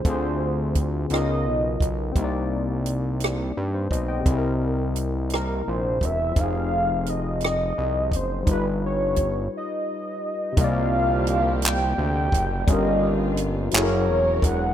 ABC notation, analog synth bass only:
X:1
M:6/8
L:1/8
Q:3/8=57
K:Cm
V:1 name="Analog synth bass" clef=bass
D,,3 _D,, _C,, C,, | C,,4 G,, =B,,, | C,,4 B,,, =E,,, | F,,,4 C,, ^F,,, |
G,,,3 z3 | C,,4 D,, ^F,,, | G,,,3 ^F,,, =E,,, E,,, |]